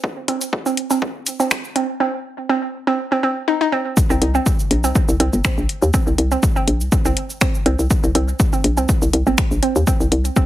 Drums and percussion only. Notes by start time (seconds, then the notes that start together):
0.04 kick
0.28 closed hi-hat
0.41 closed hi-hat, cabasa
0.53 kick
0.66 cabasa
0.77 closed hi-hat
0.91 cabasa
1.02 kick
1.27 closed hi-hat, cabasa
1.40 cabasa
1.51 finger snap, kick, closed hi-hat, cabasa
1.64 cabasa
1.76 closed hi-hat
3.97 kick, cabasa
4.10 cabasa
4.22 closed hi-hat
4.35 cabasa
4.46 kick, cabasa
4.59 cabasa
4.71 closed hi-hat
4.84 cabasa
4.95 kick, cabasa
5.09 cabasa
5.20 closed hi-hat
5.33 cabasa
5.45 finger snap, kick, closed hi-hat, cabasa
5.58 cabasa
5.69 closed hi-hat
5.82 cabasa
5.94 kick, cabasa
6.07 cabasa
6.18 closed hi-hat
6.32 cabasa
6.43 kick, cabasa
6.56 cabasa
6.68 closed hi-hat
6.81 cabasa
6.92 kick, cabasa
7.05 cabasa
7.17 closed hi-hat
7.30 cabasa
7.41 finger snap, kick, closed hi-hat, cabasa
7.54 cabasa
7.66 closed hi-hat
7.79 cabasa
7.90 kick, cabasa
8.04 cabasa
8.15 closed hi-hat
8.28 cabasa
8.40 kick, cabasa
8.53 cabasa
8.64 closed hi-hat
8.77 cabasa
8.89 kick, cabasa
9.02 cabasa
9.13 closed hi-hat
9.27 cabasa
9.38 finger snap, kick, closed hi-hat, cabasa
9.51 cabasa
9.63 closed hi-hat
9.76 cabasa
9.87 kick, cabasa
10.00 cabasa
10.12 closed hi-hat
10.25 closed hi-hat, cabasa
10.36 kick, cabasa